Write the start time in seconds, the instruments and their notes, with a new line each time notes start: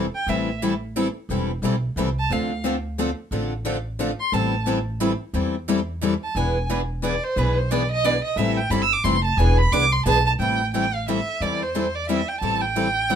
0.15 violin G5
0.27 upright bass A1, steel-string acoustic guitar E3 G3 C4 E4 A4, violin E5
0.62 steel-string acoustic guitar E3 G3 C4 E4 A4
0.96 steel-string acoustic guitar E3 G3 C4 E4 A4
1.29 upright bass E1, steel-string acoustic guitar E3 G3 C4 E4 A4
1.62 upright bass B1, steel-string acoustic guitar E3 G3 C4 E4 A4
1.96 upright bass C2, steel-string acoustic guitar E3 G3 C4 E4 A4
2.19 violin A5
2.30 upright bass D2, steel-string acoustic guitar D3 F3 A3 C4 D4 F4 A4, violin F5
2.64 steel-string acoustic guitar D3 F3 A3 C4 D4 F4 A4
2.98 steel-string acoustic guitar D3 F3 A3 C4 D4 F4 A4
3.31 upright bass A1, steel-string acoustic guitar D3 F3 A3 C4 D4 F4 A4
3.65 steel-string acoustic guitar D3 F3 A3 C4 D4 F4 A4
3.99 steel-string acoustic guitar D3 F3 A3 C4 D4 F4 A4
4.20 violin C6
4.32 upright bass A1, steel-string acoustic guitar E3 G3 C4 E4 A4, violin A5
4.67 steel-string acoustic guitar E3 G3 C4 E4 A4
5.00 steel-string acoustic guitar E3 G3 C4 E4 A4
5.34 upright bass E2, steel-string acoustic guitar E3 G3 C4 E4 A4
5.68 steel-string acoustic guitar E3 G3 C4 E4 A4
6.01 steel-string acoustic guitar E3 G3 C4 E4 A4
6.23 violin A5
6.35 upright bass E1, steel-string acoustic guitar E3 B3 D4 G#4 B4, violin G#5
6.70 steel-string acoustic guitar E3 B3 D4 G#4 B4
7.03 steel-string acoustic guitar E3 B3 D4 G#4 B4, violin D5
7.24 violin C5
7.36 upright bass B1, steel-string acoustic guitar E3 B3 D4 G#4 B4, violin B4
7.58 violin C5
7.71 steel-string acoustic guitar E3 B3 D4 G#4 B4, violin D5
7.91 violin D#5
8.04 steel-string acoustic guitar E3 B3 D4 G#4 B4, violin D5
8.24 violin D#5
8.36 upright bass A1, steel-string acoustic guitar E3 G3 C4 E4 A4, violin E5
8.57 violin G5
8.70 upright bass G1, steel-string acoustic guitar E3 G3 C4 E4 A4, violin B5
8.82 violin E6
8.93 violin D6
9.04 upright bass F1, steel-string acoustic guitar E3 G3 C4 E4 A4, violin C6
9.24 violin A5
9.37 upright bass E1, steel-string acoustic guitar E3 B3 D4 G#4 B4, violin G#5
9.58 violin B5
9.72 upright bass C2, steel-string acoustic guitar E3 B3 D4 G#4 B4, violin D6
9.92 violin C6
10.06 upright bass B1, steel-string acoustic guitar E3 B3 D4 G#4 B4, violin A5
10.26 violin A5
10.39 upright bass A1, steel-string acoustic guitar E3 G3 C4 E4 A4, violin G5
10.74 steel-string acoustic guitar E3 G3 C4 E4 A4, violin G5
10.95 violin F5
11.08 steel-string acoustic guitar E3 G3 C4 E4 A4, violin E5
11.40 upright bass E2, steel-string acoustic guitar E3 G3 C4 E4 A4, violin D5
11.63 violin C5
11.75 steel-string acoustic guitar E3 G3 C4 E4 A4
11.95 violin D5
12.05 steel-string acoustic guitar E3, violin D5 E5
12.09 steel-string acoustic guitar G3 C4 E4 A4
12.28 violin G5
12.41 upright bass A1, steel-string acoustic guitar E3 G3 C4 E4 A4, violin A5
12.61 violin G5
12.76 steel-string acoustic guitar E3 G3 C4 E4 A4
13.09 steel-string acoustic guitar E3 G3 C4 E4 A4